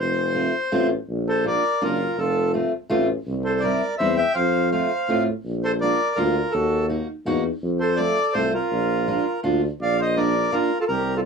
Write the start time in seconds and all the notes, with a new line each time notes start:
0.00 F1 C5
0.35 A3 C4 F4
0.72 A1 A3 C4 F4
1.09 A#1
1.28 A4 C5
1.44 A#3 D4 F4 A#4 D5
1.81 F#1 A#3 D4 F4 A#4
2.17 F1 F4 A4
2.54 A3 C4 F4
2.90 A1 A3 C4 F4
3.27 C2
3.45 A4 C5
3.60 G3 A#4 D5
3.65 C4 E4
3.98 E2 G3 C4 E4 C5 E5
4.17 E5 G5
4.34 F2 C5 F5
4.72 A3 C4 F4 C5 F5
5.08 A2 A3 C4 F4
5.44 A#1
5.64 A4 C5
5.81 A#3 D4 F4 A#4 D5
6.15 D2 A#3 D4 F4 A#4
6.51 D#2 F#4 A4
6.89 A#3 D#4 F#4
7.26 E2 A#3 D#4 F#4
7.62 F2
7.80 A4 C5
7.96 A3 C4 F4 A4 D5
8.34 C2 A3 C4 F4 A4 C5
8.54 F4 A#4
8.71 A#1
9.08 A#3 D4 F4
9.44 D2 A#3 D4 F4
9.80 A#1 D5 F5
10.00 C5 D#5
10.16 A#3 D4 F4 A#4 D5
10.52 A#3 D4 F4 A#4
10.80 F4 A4
10.88 C2 G4 A#4
11.16 F4 A4